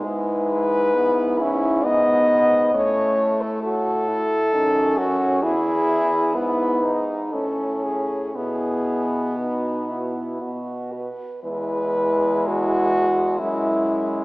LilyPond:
<<
  \new Staff \with { instrumentName = "French horn" } { \time 3/4 \key e \major \tempo 4 = 66 b'4. e'8 dis''4 | cis''8. a'16 a'4. fis'8 | gis'4 b'8. r16 a'8 gis'8 | gis'4 fis'4 r4 |
b'4 fis'4 e'4 | }
  \new Staff \with { instrumentName = "French horn" } { \time 3/4 \key e \major e'4 e'4 b4 | cis'8 r8 fis'8 e'8 dis'8 cis'8 | e'4 e'8 dis'8 cis'4 | e'4 dis'8 e'8 fis'8 b'8 |
e'2 e'4 | }
  \new Staff \with { instrumentName = "French horn" } { \time 3/4 \key e \major gis4 b8 cis'8 b4 | a4. r8 cis'4 | e'4 b8 dis'8 cis'4 | b2~ b8 r8 |
gis2 gis4 | }
  \new Staff \with { instrumentName = "French horn" } { \clef bass \time 3/4 \key e \major gis,2. | a,4. r8 fis,4 | e,4 gis,4 a,4 | b,2 b,8 r8 |
e,2 fis,4 | }
>>